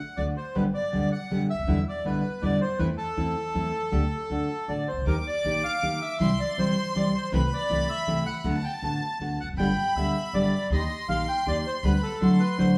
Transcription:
Already playing: F#5
0.17 D2 D3 A3 D4 F#4 D5
0.37 C5
0.55 G1 B2 D3 G3 B3 G4 B4
0.74 D5
0.92 D2 B2 D3 G3 B3 G4
1.12 F#5
1.30 G1 B2 D3 G3 B3 G4
1.50 E5
1.54 C#2
1.59 D2
1.63 D#2 B2
1.68 E2 D3 G3 B3 E4
1.88 D5
2.05 B1 B2 D3 G3 B3 E4 B4
2.42 E2 B2 D3 G3 B3 E4 D5
2.61 C5
2.79 E2 E3 A3 C4 E4 B4
2.98 A4
3.17 E2 E3 A3 C4 E4
3.54 E2 E3 A3 C4 E4
3.92 D2 D3 A3 D4 G4
4.30 D2 D3 A3 D4 F#4
4.68 A1 D3 A3 D4 F#4 D5
4.88 C5
4.92 C2
4.97 C#2
5.01 D2
5.06 D#2 D#3 A#3 D#4 G4 A#4 D6
5.27 D5
5.45 A#1 D#3 A#3 D#4 G4
5.64 F5
5.82 D#2 D#3 A#3 D#4 G4
6.02 E5
6.20 C2 C3 E3 G3 C4 E4 C6
6.40 D5
6.58 G1 C3 E3 G3 C4 E4 C5
6.95 C2 C3 E3 G3 C4 E4 D5
7.15 C5
7.32 C2 C3 E3 A3 C4 E4 B4 B5
7.54 D5
7.70 C2 C3 E3 A3 C4 E4
7.89 E5
8.07 C2 C3 E3 A3 C4 E4
8.26 F#5
8.39 B5
8.44 D2 D3 A3 B3 F#4 A5
8.64 G5
8.82 A1 D3 A3 B3 F#4 A5
9.20 D2 D3 A3 B3 F#4
9.40 E1 F#5
9.48 F1
9.53 F#1
9.57 G1 B2 D3 G3 B3 G4 G5 B5
9.95 D2 B2 D3 G3 B3 G4 E5
10.33 G1 B2 D3 G3 B3 G4 D5
10.70 D#2 D#3 A#3 D#4 G4 D#5 C6
11.08 A#1 D#3 A#3 D#4 G4 F5
11.28 G5
11.46 D#2 D#3 A#3 D#4 G4 D5
11.67 C5
11.83 D2 D3 G3 B3 G4 B4 B5
12.03 A4
12.21 D2 D3 F#3 A3 E4 F#4 C6
12.40 B4
12.58 A1 D3 F#3 A3 E4 F#4 C5

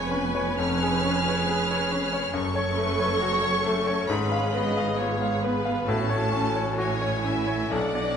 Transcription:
Already playing: F1 F2 G#3 C#4 G#4 B4 C#5 G#5
0.08 B3 C#4 B4
0.35 C#5
0.59 F2 C#4 C#5 F6
0.83 G#4
1.04 C#4 G#4
1.28 C#5
1.49 C#4 G#4
1.71 C#5
1.92 C#4
2.13 C#5
2.33 F#1 F#2 C#4 A4 C#6
2.55 C#5
2.75 A3 B4
2.99 C#5
3.16 C#5
3.22 F#4
3.43 C#5
3.62 A3 A4
3.87 C#5
4.07 G#1 G#2 G#4 B4 B5
4.32 F5
4.53 B3 D#5
4.77 F5
4.98 B3 F4 C#5
5.22 F5
5.43 B3 B4
5.65 F5
5.87 A1 A2 C#4 F#4 A4 A5
6.09 C#5
6.32 C#4 F#4
6.56 C#5
6.78 C#4 E4 F#4 C#5 G#5
7.02 C#5
7.25 C#4 E4 E5
7.47 C#5
7.71 B1 B2 D4 D5 F#5
7.95 D5

